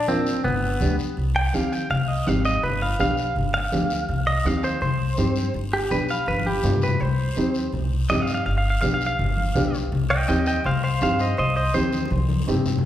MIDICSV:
0, 0, Header, 1, 5, 480
1, 0, Start_track
1, 0, Key_signature, -3, "minor"
1, 0, Tempo, 364520
1, 1546, Time_signature, 4, 2, 24, 8
1, 16925, End_track
2, 0, Start_track
2, 0, Title_t, "Clean electric guitar"
2, 0, Program_c, 0, 27
2, 110, Note_on_c, 0, 60, 100
2, 580, Note_off_c, 0, 60, 0
2, 585, Note_on_c, 0, 59, 90
2, 1255, Note_off_c, 0, 59, 0
2, 1789, Note_on_c, 0, 79, 96
2, 2030, Note_off_c, 0, 79, 0
2, 2030, Note_on_c, 0, 77, 74
2, 2273, Note_off_c, 0, 77, 0
2, 2273, Note_on_c, 0, 79, 81
2, 2502, Note_off_c, 0, 79, 0
2, 2511, Note_on_c, 0, 77, 77
2, 2740, Note_off_c, 0, 77, 0
2, 2740, Note_on_c, 0, 75, 87
2, 2993, Note_off_c, 0, 75, 0
2, 2993, Note_on_c, 0, 77, 87
2, 3222, Note_off_c, 0, 77, 0
2, 3231, Note_on_c, 0, 75, 76
2, 3461, Note_off_c, 0, 75, 0
2, 3470, Note_on_c, 0, 71, 90
2, 3700, Note_off_c, 0, 71, 0
2, 3715, Note_on_c, 0, 77, 66
2, 3943, Note_off_c, 0, 77, 0
2, 3957, Note_on_c, 0, 77, 94
2, 4417, Note_off_c, 0, 77, 0
2, 4661, Note_on_c, 0, 77, 102
2, 5595, Note_off_c, 0, 77, 0
2, 5621, Note_on_c, 0, 75, 84
2, 5875, Note_off_c, 0, 75, 0
2, 5875, Note_on_c, 0, 77, 87
2, 6103, Note_off_c, 0, 77, 0
2, 6112, Note_on_c, 0, 72, 76
2, 6329, Note_off_c, 0, 72, 0
2, 6345, Note_on_c, 0, 72, 85
2, 7277, Note_off_c, 0, 72, 0
2, 7551, Note_on_c, 0, 67, 77
2, 7782, Note_off_c, 0, 67, 0
2, 7788, Note_on_c, 0, 71, 94
2, 8020, Note_off_c, 0, 71, 0
2, 8040, Note_on_c, 0, 77, 83
2, 8267, Note_off_c, 0, 77, 0
2, 8270, Note_on_c, 0, 71, 102
2, 8502, Note_off_c, 0, 71, 0
2, 8513, Note_on_c, 0, 67, 78
2, 8976, Note_off_c, 0, 67, 0
2, 8999, Note_on_c, 0, 71, 77
2, 9225, Note_off_c, 0, 71, 0
2, 9225, Note_on_c, 0, 72, 94
2, 10159, Note_off_c, 0, 72, 0
2, 10663, Note_on_c, 0, 75, 97
2, 10819, Note_off_c, 0, 75, 0
2, 10819, Note_on_c, 0, 77, 74
2, 10972, Note_off_c, 0, 77, 0
2, 10988, Note_on_c, 0, 77, 82
2, 11125, Note_off_c, 0, 77, 0
2, 11141, Note_on_c, 0, 77, 85
2, 11278, Note_off_c, 0, 77, 0
2, 11294, Note_on_c, 0, 77, 83
2, 11443, Note_off_c, 0, 77, 0
2, 11459, Note_on_c, 0, 77, 83
2, 11590, Note_off_c, 0, 77, 0
2, 11606, Note_on_c, 0, 77, 93
2, 11757, Note_off_c, 0, 77, 0
2, 11772, Note_on_c, 0, 77, 81
2, 11921, Note_off_c, 0, 77, 0
2, 11937, Note_on_c, 0, 77, 101
2, 12874, Note_off_c, 0, 77, 0
2, 13303, Note_on_c, 0, 75, 84
2, 13311, Note_on_c, 0, 79, 93
2, 13520, Note_off_c, 0, 75, 0
2, 13531, Note_off_c, 0, 79, 0
2, 13536, Note_on_c, 0, 75, 88
2, 13547, Note_on_c, 0, 79, 90
2, 13765, Note_off_c, 0, 75, 0
2, 13778, Note_off_c, 0, 79, 0
2, 13788, Note_on_c, 0, 75, 79
2, 13794, Note_on_c, 0, 79, 91
2, 14012, Note_off_c, 0, 75, 0
2, 14024, Note_off_c, 0, 79, 0
2, 14031, Note_on_c, 0, 72, 82
2, 14041, Note_on_c, 0, 77, 96
2, 14253, Note_off_c, 0, 72, 0
2, 14261, Note_off_c, 0, 77, 0
2, 14269, Note_on_c, 0, 72, 92
2, 14277, Note_on_c, 0, 77, 90
2, 14492, Note_off_c, 0, 72, 0
2, 14506, Note_off_c, 0, 77, 0
2, 14513, Note_on_c, 0, 72, 83
2, 14525, Note_on_c, 0, 77, 102
2, 14734, Note_off_c, 0, 72, 0
2, 14754, Note_on_c, 0, 72, 78
2, 14762, Note_off_c, 0, 77, 0
2, 14762, Note_on_c, 0, 75, 98
2, 14975, Note_off_c, 0, 72, 0
2, 14980, Note_off_c, 0, 75, 0
2, 14988, Note_on_c, 0, 72, 87
2, 15001, Note_on_c, 0, 75, 83
2, 15209, Note_off_c, 0, 72, 0
2, 15216, Note_off_c, 0, 75, 0
2, 15225, Note_on_c, 0, 72, 66
2, 15231, Note_on_c, 0, 75, 79
2, 15450, Note_off_c, 0, 72, 0
2, 15463, Note_off_c, 0, 75, 0
2, 15464, Note_on_c, 0, 72, 114
2, 15932, Note_off_c, 0, 72, 0
2, 16925, End_track
3, 0, Start_track
3, 0, Title_t, "Upright piano"
3, 0, Program_c, 1, 0
3, 97, Note_on_c, 1, 58, 78
3, 107, Note_on_c, 1, 62, 72
3, 109, Note_on_c, 1, 65, 88
3, 438, Note_off_c, 1, 58, 0
3, 443, Note_off_c, 1, 62, 0
3, 444, Note_off_c, 1, 65, 0
3, 1057, Note_on_c, 1, 59, 75
3, 1065, Note_on_c, 1, 62, 71
3, 1069, Note_on_c, 1, 67, 76
3, 1397, Note_off_c, 1, 59, 0
3, 1401, Note_off_c, 1, 62, 0
3, 1403, Note_off_c, 1, 67, 0
3, 2023, Note_on_c, 1, 60, 63
3, 2026, Note_on_c, 1, 63, 63
3, 2033, Note_on_c, 1, 67, 85
3, 2360, Note_off_c, 1, 60, 0
3, 2362, Note_off_c, 1, 63, 0
3, 2365, Note_off_c, 1, 67, 0
3, 2982, Note_on_c, 1, 60, 74
3, 2992, Note_on_c, 1, 63, 68
3, 2994, Note_on_c, 1, 67, 82
3, 3320, Note_off_c, 1, 60, 0
3, 3324, Note_off_c, 1, 63, 0
3, 3325, Note_off_c, 1, 67, 0
3, 3938, Note_on_c, 1, 59, 79
3, 3940, Note_on_c, 1, 62, 66
3, 3945, Note_on_c, 1, 67, 87
3, 4277, Note_off_c, 1, 59, 0
3, 4278, Note_off_c, 1, 62, 0
3, 4281, Note_off_c, 1, 67, 0
3, 4898, Note_on_c, 1, 59, 72
3, 4902, Note_on_c, 1, 62, 59
3, 4906, Note_on_c, 1, 67, 83
3, 5238, Note_off_c, 1, 59, 0
3, 5240, Note_off_c, 1, 62, 0
3, 5242, Note_off_c, 1, 67, 0
3, 5862, Note_on_c, 1, 60, 73
3, 5865, Note_on_c, 1, 63, 65
3, 5872, Note_on_c, 1, 67, 77
3, 6200, Note_off_c, 1, 60, 0
3, 6202, Note_off_c, 1, 63, 0
3, 6205, Note_off_c, 1, 67, 0
3, 6818, Note_on_c, 1, 60, 70
3, 6824, Note_on_c, 1, 63, 59
3, 6825, Note_on_c, 1, 67, 82
3, 7159, Note_off_c, 1, 60, 0
3, 7161, Note_off_c, 1, 63, 0
3, 7162, Note_off_c, 1, 67, 0
3, 7775, Note_on_c, 1, 59, 69
3, 7778, Note_on_c, 1, 62, 63
3, 7787, Note_on_c, 1, 67, 83
3, 8117, Note_off_c, 1, 59, 0
3, 8119, Note_off_c, 1, 62, 0
3, 8123, Note_off_c, 1, 67, 0
3, 8744, Note_on_c, 1, 59, 77
3, 8749, Note_on_c, 1, 62, 63
3, 8757, Note_on_c, 1, 65, 71
3, 9082, Note_off_c, 1, 59, 0
3, 9085, Note_off_c, 1, 62, 0
3, 9089, Note_off_c, 1, 65, 0
3, 9706, Note_on_c, 1, 60, 74
3, 9710, Note_on_c, 1, 63, 74
3, 9714, Note_on_c, 1, 67, 78
3, 10043, Note_off_c, 1, 60, 0
3, 10046, Note_off_c, 1, 63, 0
3, 10048, Note_off_c, 1, 67, 0
3, 10660, Note_on_c, 1, 60, 72
3, 10663, Note_on_c, 1, 63, 68
3, 10670, Note_on_c, 1, 67, 87
3, 11001, Note_off_c, 1, 60, 0
3, 11003, Note_off_c, 1, 63, 0
3, 11006, Note_off_c, 1, 67, 0
3, 11614, Note_on_c, 1, 59, 78
3, 11617, Note_on_c, 1, 62, 61
3, 11624, Note_on_c, 1, 67, 83
3, 11958, Note_off_c, 1, 59, 0
3, 11959, Note_off_c, 1, 62, 0
3, 11963, Note_off_c, 1, 67, 0
3, 12578, Note_on_c, 1, 59, 90
3, 12583, Note_on_c, 1, 62, 75
3, 12585, Note_on_c, 1, 67, 96
3, 12920, Note_off_c, 1, 59, 0
3, 12922, Note_off_c, 1, 62, 0
3, 12923, Note_off_c, 1, 67, 0
3, 13540, Note_on_c, 1, 60, 86
3, 13544, Note_on_c, 1, 63, 69
3, 13551, Note_on_c, 1, 67, 86
3, 13881, Note_off_c, 1, 60, 0
3, 13883, Note_off_c, 1, 63, 0
3, 13886, Note_off_c, 1, 67, 0
3, 14505, Note_on_c, 1, 60, 69
3, 14512, Note_on_c, 1, 63, 64
3, 14518, Note_on_c, 1, 67, 84
3, 14843, Note_off_c, 1, 60, 0
3, 14846, Note_off_c, 1, 63, 0
3, 14849, Note_off_c, 1, 67, 0
3, 15458, Note_on_c, 1, 60, 75
3, 15468, Note_on_c, 1, 63, 70
3, 15472, Note_on_c, 1, 67, 84
3, 15799, Note_off_c, 1, 60, 0
3, 15804, Note_off_c, 1, 63, 0
3, 15806, Note_off_c, 1, 67, 0
3, 16427, Note_on_c, 1, 60, 87
3, 16436, Note_on_c, 1, 63, 75
3, 16441, Note_on_c, 1, 67, 90
3, 16764, Note_off_c, 1, 60, 0
3, 16768, Note_off_c, 1, 63, 0
3, 16771, Note_off_c, 1, 67, 0
3, 16925, End_track
4, 0, Start_track
4, 0, Title_t, "Upright bass"
4, 0, Program_c, 2, 32
4, 0, Note_on_c, 2, 34, 91
4, 395, Note_off_c, 2, 34, 0
4, 592, Note_on_c, 2, 31, 94
4, 974, Note_off_c, 2, 31, 0
4, 1068, Note_on_c, 2, 38, 96
4, 1259, Note_off_c, 2, 38, 0
4, 1549, Note_on_c, 2, 36, 90
4, 1931, Note_off_c, 2, 36, 0
4, 2033, Note_on_c, 2, 39, 89
4, 2414, Note_off_c, 2, 39, 0
4, 2513, Note_on_c, 2, 36, 82
4, 2894, Note_off_c, 2, 36, 0
4, 2997, Note_on_c, 2, 32, 93
4, 3376, Note_off_c, 2, 32, 0
4, 3462, Note_on_c, 2, 31, 94
4, 3847, Note_off_c, 2, 31, 0
4, 3950, Note_on_c, 2, 35, 90
4, 4332, Note_off_c, 2, 35, 0
4, 4437, Note_on_c, 2, 31, 91
4, 4816, Note_off_c, 2, 31, 0
4, 4912, Note_on_c, 2, 38, 92
4, 5293, Note_off_c, 2, 38, 0
4, 5384, Note_on_c, 2, 36, 92
4, 5769, Note_off_c, 2, 36, 0
4, 5859, Note_on_c, 2, 39, 100
4, 6246, Note_off_c, 2, 39, 0
4, 6345, Note_on_c, 2, 36, 88
4, 6730, Note_off_c, 2, 36, 0
4, 6824, Note_on_c, 2, 43, 99
4, 7209, Note_off_c, 2, 43, 0
4, 7304, Note_on_c, 2, 31, 87
4, 7689, Note_off_c, 2, 31, 0
4, 7785, Note_on_c, 2, 35, 82
4, 8170, Note_off_c, 2, 35, 0
4, 8266, Note_on_c, 2, 31, 90
4, 8651, Note_off_c, 2, 31, 0
4, 8739, Note_on_c, 2, 43, 95
4, 9127, Note_off_c, 2, 43, 0
4, 9229, Note_on_c, 2, 36, 103
4, 9613, Note_off_c, 2, 36, 0
4, 9703, Note_on_c, 2, 39, 88
4, 10089, Note_off_c, 2, 39, 0
4, 10181, Note_on_c, 2, 36, 85
4, 10568, Note_off_c, 2, 36, 0
4, 10665, Note_on_c, 2, 43, 90
4, 11051, Note_off_c, 2, 43, 0
4, 11141, Note_on_c, 2, 31, 99
4, 11529, Note_off_c, 2, 31, 0
4, 11624, Note_on_c, 2, 35, 90
4, 12010, Note_off_c, 2, 35, 0
4, 12104, Note_on_c, 2, 31, 85
4, 12490, Note_off_c, 2, 31, 0
4, 12582, Note_on_c, 2, 35, 95
4, 12969, Note_off_c, 2, 35, 0
4, 13066, Note_on_c, 2, 36, 97
4, 13451, Note_off_c, 2, 36, 0
4, 13555, Note_on_c, 2, 39, 87
4, 13937, Note_off_c, 2, 39, 0
4, 14032, Note_on_c, 2, 36, 85
4, 14415, Note_off_c, 2, 36, 0
4, 14511, Note_on_c, 2, 43, 95
4, 14894, Note_off_c, 2, 43, 0
4, 14988, Note_on_c, 2, 36, 103
4, 15372, Note_off_c, 2, 36, 0
4, 15473, Note_on_c, 2, 39, 93
4, 15855, Note_off_c, 2, 39, 0
4, 15948, Note_on_c, 2, 36, 98
4, 16332, Note_off_c, 2, 36, 0
4, 16442, Note_on_c, 2, 43, 99
4, 16821, Note_off_c, 2, 43, 0
4, 16925, End_track
5, 0, Start_track
5, 0, Title_t, "Drums"
5, 104, Note_on_c, 9, 73, 70
5, 106, Note_on_c, 9, 63, 80
5, 236, Note_off_c, 9, 73, 0
5, 237, Note_off_c, 9, 63, 0
5, 350, Note_on_c, 9, 73, 73
5, 482, Note_off_c, 9, 73, 0
5, 583, Note_on_c, 9, 64, 80
5, 595, Note_on_c, 9, 74, 73
5, 714, Note_off_c, 9, 64, 0
5, 727, Note_off_c, 9, 74, 0
5, 1060, Note_on_c, 9, 63, 90
5, 1060, Note_on_c, 9, 64, 81
5, 1072, Note_on_c, 9, 73, 68
5, 1192, Note_off_c, 9, 63, 0
5, 1192, Note_off_c, 9, 64, 0
5, 1204, Note_off_c, 9, 73, 0
5, 1305, Note_on_c, 9, 73, 66
5, 1437, Note_off_c, 9, 73, 0
5, 1541, Note_on_c, 9, 74, 69
5, 1673, Note_off_c, 9, 74, 0
5, 2020, Note_on_c, 9, 63, 81
5, 2031, Note_on_c, 9, 73, 74
5, 2152, Note_off_c, 9, 63, 0
5, 2163, Note_off_c, 9, 73, 0
5, 2272, Note_on_c, 9, 73, 62
5, 2404, Note_off_c, 9, 73, 0
5, 2502, Note_on_c, 9, 64, 72
5, 2505, Note_on_c, 9, 74, 67
5, 2634, Note_off_c, 9, 64, 0
5, 2637, Note_off_c, 9, 74, 0
5, 2983, Note_on_c, 9, 63, 94
5, 2987, Note_on_c, 9, 73, 59
5, 3115, Note_off_c, 9, 63, 0
5, 3118, Note_off_c, 9, 73, 0
5, 3223, Note_on_c, 9, 73, 64
5, 3354, Note_off_c, 9, 73, 0
5, 3468, Note_on_c, 9, 64, 74
5, 3469, Note_on_c, 9, 74, 63
5, 3600, Note_off_c, 9, 64, 0
5, 3601, Note_off_c, 9, 74, 0
5, 3942, Note_on_c, 9, 73, 68
5, 3944, Note_on_c, 9, 63, 85
5, 4074, Note_off_c, 9, 73, 0
5, 4075, Note_off_c, 9, 63, 0
5, 4179, Note_on_c, 9, 73, 59
5, 4311, Note_off_c, 9, 73, 0
5, 4419, Note_on_c, 9, 64, 73
5, 4427, Note_on_c, 9, 74, 67
5, 4551, Note_off_c, 9, 64, 0
5, 4559, Note_off_c, 9, 74, 0
5, 4902, Note_on_c, 9, 63, 92
5, 4903, Note_on_c, 9, 73, 72
5, 5034, Note_off_c, 9, 63, 0
5, 5035, Note_off_c, 9, 73, 0
5, 5141, Note_on_c, 9, 73, 76
5, 5272, Note_off_c, 9, 73, 0
5, 5381, Note_on_c, 9, 74, 78
5, 5387, Note_on_c, 9, 64, 69
5, 5512, Note_off_c, 9, 74, 0
5, 5518, Note_off_c, 9, 64, 0
5, 5864, Note_on_c, 9, 63, 71
5, 5869, Note_on_c, 9, 73, 69
5, 5996, Note_off_c, 9, 63, 0
5, 6000, Note_off_c, 9, 73, 0
5, 6098, Note_on_c, 9, 73, 65
5, 6230, Note_off_c, 9, 73, 0
5, 6332, Note_on_c, 9, 74, 64
5, 6346, Note_on_c, 9, 64, 90
5, 6464, Note_off_c, 9, 74, 0
5, 6478, Note_off_c, 9, 64, 0
5, 6813, Note_on_c, 9, 73, 69
5, 6821, Note_on_c, 9, 63, 99
5, 6944, Note_off_c, 9, 73, 0
5, 6953, Note_off_c, 9, 63, 0
5, 7055, Note_on_c, 9, 73, 70
5, 7186, Note_off_c, 9, 73, 0
5, 7298, Note_on_c, 9, 74, 70
5, 7430, Note_off_c, 9, 74, 0
5, 7774, Note_on_c, 9, 73, 70
5, 7784, Note_on_c, 9, 63, 74
5, 7906, Note_off_c, 9, 73, 0
5, 7915, Note_off_c, 9, 63, 0
5, 8015, Note_on_c, 9, 73, 61
5, 8146, Note_off_c, 9, 73, 0
5, 8246, Note_on_c, 9, 74, 62
5, 8263, Note_on_c, 9, 63, 67
5, 8378, Note_off_c, 9, 74, 0
5, 8394, Note_off_c, 9, 63, 0
5, 8419, Note_on_c, 9, 63, 80
5, 8551, Note_off_c, 9, 63, 0
5, 8736, Note_on_c, 9, 73, 68
5, 8741, Note_on_c, 9, 64, 94
5, 8867, Note_off_c, 9, 73, 0
5, 8872, Note_off_c, 9, 64, 0
5, 8901, Note_on_c, 9, 64, 72
5, 8975, Note_on_c, 9, 73, 76
5, 9033, Note_off_c, 9, 64, 0
5, 9061, Note_on_c, 9, 64, 99
5, 9107, Note_off_c, 9, 73, 0
5, 9192, Note_off_c, 9, 64, 0
5, 9216, Note_on_c, 9, 74, 74
5, 9225, Note_on_c, 9, 64, 68
5, 9348, Note_off_c, 9, 74, 0
5, 9357, Note_off_c, 9, 64, 0
5, 9694, Note_on_c, 9, 73, 69
5, 9700, Note_on_c, 9, 63, 78
5, 9826, Note_off_c, 9, 73, 0
5, 9831, Note_off_c, 9, 63, 0
5, 9932, Note_on_c, 9, 73, 73
5, 10064, Note_off_c, 9, 73, 0
5, 10172, Note_on_c, 9, 74, 65
5, 10185, Note_on_c, 9, 64, 79
5, 10303, Note_off_c, 9, 74, 0
5, 10316, Note_off_c, 9, 64, 0
5, 10655, Note_on_c, 9, 73, 70
5, 10664, Note_on_c, 9, 63, 98
5, 10664, Note_on_c, 9, 64, 81
5, 10787, Note_off_c, 9, 73, 0
5, 10796, Note_off_c, 9, 63, 0
5, 10796, Note_off_c, 9, 64, 0
5, 10894, Note_on_c, 9, 73, 67
5, 11026, Note_off_c, 9, 73, 0
5, 11139, Note_on_c, 9, 74, 82
5, 11271, Note_off_c, 9, 74, 0
5, 11614, Note_on_c, 9, 63, 83
5, 11620, Note_on_c, 9, 73, 68
5, 11746, Note_off_c, 9, 63, 0
5, 11752, Note_off_c, 9, 73, 0
5, 11863, Note_on_c, 9, 73, 68
5, 11995, Note_off_c, 9, 73, 0
5, 12103, Note_on_c, 9, 64, 85
5, 12105, Note_on_c, 9, 74, 67
5, 12235, Note_off_c, 9, 64, 0
5, 12237, Note_off_c, 9, 74, 0
5, 12337, Note_on_c, 9, 63, 72
5, 12469, Note_off_c, 9, 63, 0
5, 12581, Note_on_c, 9, 63, 91
5, 12581, Note_on_c, 9, 64, 80
5, 12585, Note_on_c, 9, 73, 70
5, 12713, Note_off_c, 9, 63, 0
5, 12713, Note_off_c, 9, 64, 0
5, 12716, Note_off_c, 9, 73, 0
5, 12825, Note_on_c, 9, 73, 71
5, 12957, Note_off_c, 9, 73, 0
5, 13065, Note_on_c, 9, 74, 82
5, 13066, Note_on_c, 9, 64, 76
5, 13196, Note_off_c, 9, 74, 0
5, 13198, Note_off_c, 9, 64, 0
5, 13537, Note_on_c, 9, 73, 74
5, 13542, Note_on_c, 9, 63, 78
5, 13669, Note_off_c, 9, 73, 0
5, 13674, Note_off_c, 9, 63, 0
5, 13776, Note_on_c, 9, 73, 68
5, 13908, Note_off_c, 9, 73, 0
5, 14014, Note_on_c, 9, 74, 66
5, 14022, Note_on_c, 9, 64, 84
5, 14146, Note_off_c, 9, 74, 0
5, 14154, Note_off_c, 9, 64, 0
5, 14498, Note_on_c, 9, 73, 72
5, 14501, Note_on_c, 9, 63, 91
5, 14629, Note_off_c, 9, 73, 0
5, 14632, Note_off_c, 9, 63, 0
5, 14733, Note_on_c, 9, 73, 72
5, 14864, Note_off_c, 9, 73, 0
5, 14976, Note_on_c, 9, 74, 67
5, 15108, Note_off_c, 9, 74, 0
5, 15461, Note_on_c, 9, 73, 67
5, 15468, Note_on_c, 9, 63, 82
5, 15593, Note_off_c, 9, 73, 0
5, 15599, Note_off_c, 9, 63, 0
5, 15703, Note_on_c, 9, 73, 69
5, 15706, Note_on_c, 9, 63, 76
5, 15835, Note_off_c, 9, 73, 0
5, 15838, Note_off_c, 9, 63, 0
5, 15873, Note_on_c, 9, 63, 70
5, 15941, Note_on_c, 9, 74, 72
5, 16005, Note_off_c, 9, 63, 0
5, 16033, Note_on_c, 9, 63, 72
5, 16072, Note_off_c, 9, 74, 0
5, 16164, Note_off_c, 9, 63, 0
5, 16188, Note_on_c, 9, 63, 90
5, 16319, Note_off_c, 9, 63, 0
5, 16354, Note_on_c, 9, 64, 61
5, 16433, Note_on_c, 9, 73, 75
5, 16486, Note_off_c, 9, 64, 0
5, 16515, Note_on_c, 9, 64, 103
5, 16565, Note_off_c, 9, 73, 0
5, 16647, Note_off_c, 9, 64, 0
5, 16666, Note_on_c, 9, 73, 69
5, 16673, Note_on_c, 9, 64, 94
5, 16798, Note_off_c, 9, 73, 0
5, 16804, Note_off_c, 9, 64, 0
5, 16833, Note_on_c, 9, 64, 104
5, 16925, Note_off_c, 9, 64, 0
5, 16925, End_track
0, 0, End_of_file